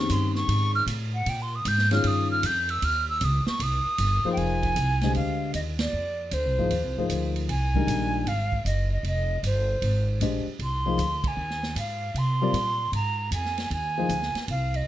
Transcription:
Already playing: grand piano D#3 C4 C#4 G4 G#4, flute C#6
0.10 upright bass G2, flute C6, hi-hat pedal, ride
0.35 flute C#6, snare
0.48 upright bass G#2, ride
0.75 flute F6
0.86 upright bass A2, hi-hat pedal, ride
1.14 flute F#5
1.26 upright bass A#2, flute G5, ride
1.42 flute C6
1.55 flute D#6
1.65 upright bass G#2, flute G6, hi-hat pedal, ride
1.78 snare
1.91 grand piano D#3 C#4 F4 G#4 C#5, flute F6, snare, ride
2.04 upright bass G2, flute D#6, ride
2.31 flute F6
2.43 upright bass F2, flute G6, hi-hat pedal, ride
2.69 flute E6, ride
2.82 upright bass D#2, flute F6, ride
3.09 flute E6
3.21 upright bass C#2, flute D#6, hi-hat pedal, ride
3.46 flute C#6, muted upright bass stroke, snare
3.60 upright bass C2, flute D#6, ride
3.86 muted upright bass stroke
3.98 upright bass G1, hi-hat pedal, ride
4.25 grand piano F3 A#3 D#4 G#4 C5, muted upright bass stroke
4.33 flute G5
4.37 upright bass F1, flute G#5, ride
4.63 kick, ride
4.76 upright bass C2, hi-hat pedal, ride
5.01 grand piano D3 G#3 G4 C5 D#5, snare, ride
5.15 upright bass D2, flute F5, ride
5.54 upright bass D#2, flute D#5, hi-hat pedal, ride
5.79 flute D5, snare, ride
5.93 upright bass F2
6.31 upright bass D2, flute C5, hi-hat pedal, ride
6.45 upright bass C2
6.58 upright bass G#1, grand piano F3 A#3 D#4 G#4 C5
6.71 upright bass D#2, ride
6.84 upright bass C2
6.97 upright bass G#1, grand piano F3 A#3 D#4 G#4 C5
7.10 upright bass D2, hi-hat pedal, ride
7.36 ride
7.49 upright bass C2, flute G#5, ride
7.74 grand piano D#3 G3 G#3 D4 A#4, kick
7.87 upright bass A#1, hi-hat pedal, ride
8.26 upright bass G#1, flute F5, ride
8.52 kick
8.65 upright bass F#1, flute D#5, hi-hat pedal, ride
8.92 flute D#5
9.03 upright bass F1, flute D#5, ride
9.43 upright bass G1, flute C5, hi-hat pedal, ride
9.82 upright bass G#1, ride
10.20 upright bass A#1, grand piano G#3 D4 G4 C5 D#5, hi-hat pedal, ride
10.46 muted upright bass stroke
10.59 upright bass C2, ride
10.63 flute C6
10.86 grand piano F3 A#3 D#4 G#4 C5
10.98 upright bass D2, hi-hat pedal, ride
11.24 flute G#5, kick, ride
11.37 upright bass D#2
11.50 snare
11.63 snare
11.76 upright bass G#2, flute F5, hi-hat pedal, ride
12.14 upright bass C3, flute C6, ride
12.41 grand piano G3 C4 F4 A#4 D5
12.53 upright bass A#2, hi-hat pedal, ride
12.92 upright bass G#2, flute A#5, ride
13.31 upright bass F2, flute G#5, hi-hat pedal, ride
13.45 snare
13.58 snare, ride
13.70 upright bass D#2, flute G#5, ride
13.98 grand piano F3 A#3 D#4 G#4 C5
14.09 upright bass D2, hi-hat pedal, ride
14.22 snare
14.35 muted upright bass stroke, snare, ride
14.48 upright bass C2, flute F5, ride
14.74 flute D#5, ride

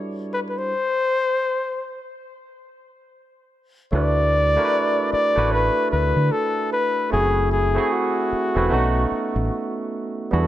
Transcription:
Already playing: tine electric piano G3 D4 E4 F#4 A4 D5
0.34 flugelhorn B4
0.49 flugelhorn B4
0.58 flugelhorn C5
3.92 fingered electric bass D2, tine electric piano A3 D4 E4 F#4 B4, flugelhorn D5
4.56 tine electric piano A3 D4 E4 F#4 A#4
4.65 tine electric piano B4
5.13 flugelhorn D5, muted fingered electric bass stroke
5.35 fingered electric bass A1, tine electric piano A3 D4 E4 F#4 B4
5.52 flugelhorn B4
5.91 fingered electric bass D2, flugelhorn B4
6.16 fingered electric bass D3
6.32 flugelhorn A4
6.73 flugelhorn B4
7.10 fingered electric bass F#1, tine electric piano A3 C4 E4 F#4 G#4, flugelhorn G#4
7.52 flugelhorn G#4
7.75 tine electric piano A3 C4 E4 F#4 G#4
7.92 flugelhorn F#4
8.32 muted fingered electric bass stroke
8.55 fingered electric bass E1, tine electric piano A3 C4 E4 F#4 B4
8.70 fingered electric bass B1, tine electric piano A3 B3 C#4 D#4 F#4
9.12 muted fingered electric bass stroke
9.36 fingered electric bass A1
10.31 fingered electric bass E2, tine electric piano G3 B3 D4 E4 F#4, flugelhorn A4

